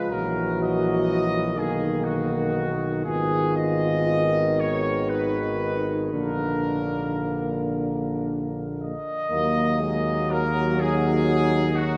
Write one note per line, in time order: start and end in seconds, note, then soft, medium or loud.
0.00 0.12 G#3 medium
0.00 0.10 F4 medium
0.00 0.10 B4 medium
0.10 1.58 A#1 medium
0.10 1.57 E3 medium
0.10 1.57 F#3 medium
0.10 1.57 F#4 medium
0.10 0.62 A#4 medium
0.62 1.55 D#5 medium
1.55 3.06 B1 medium
1.55 3.05 D#3 medium
1.55 2.88 A#3 medium
1.55 3.07 D#4 medium
1.55 2.04 G#4 medium
2.03 3.06 F#4 medium
3.05 6.10 G#1 medium
3.05 6.14 D#3 medium
3.05 6.09 B3 medium
3.05 4.43 F4 medium
3.05 3.57 G#4 medium
3.57 4.56 D#5 medium
4.58 6.11 D#4 medium
4.58 5.09 C#5 medium
5.08 5.96 B4 medium
6.12 8.93 A#1 medium
6.12 8.97 D3 medium
6.12 8.93 A#3 medium
6.12 8.47 D4 medium
6.12 7.68 A#4 medium
8.81 10.27 D#5 medium
9.31 11.97 D#2 medium
9.31 11.97 F#3 medium
9.31 9.83 A#3 medium
9.31 10.76 A#3 medium
9.81 10.33 G#3 medium
10.30 11.97 F#3 medium
10.30 10.79 A#4 loud
10.79 11.97 D#4 medium
10.79 11.77 G#4 loud
11.76 11.97 F#4 medium